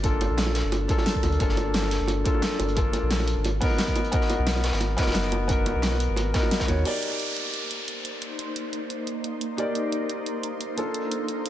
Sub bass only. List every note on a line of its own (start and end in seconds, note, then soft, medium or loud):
0.00 0.28 G1 loud
0.30 0.62 A#1 medium
0.64 0.88 G1 medium
1.23 1.39 D2 medium
1.40 1.99 G1 loud
2.00 2.24 G1 medium
2.60 2.92 G1 loud
3.02 3.35 A#1 medium
3.37 3.60 G#1 medium
4.39 4.72 B1 medium
4.73 4.97 G#1 medium
5.07 5.74 F#1 loud
5.75 6.08 B1 medium
6.09 6.33 G#1 medium
6.68 6.84 D#2 medium